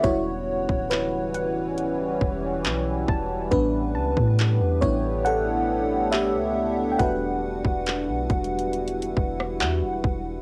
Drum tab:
HH |x-----------x-----x-----x-----------x-----------|x-----------x-----x-----x-----------x-----------|x-----------x-----x-x-x-x-x-x-------x-----------|
CP |------------x-----------------------x-----------|------------x-----------------------x-----------|------------x-----------------------x-----------|
SD |------------------------------------------------|------------------------------------------------|---------------------------------r--------------|
BD |o--------o--------------------o-----------o-----|o--------o--------o-----------------------------|o--------o--------o-----------o-----------o-----|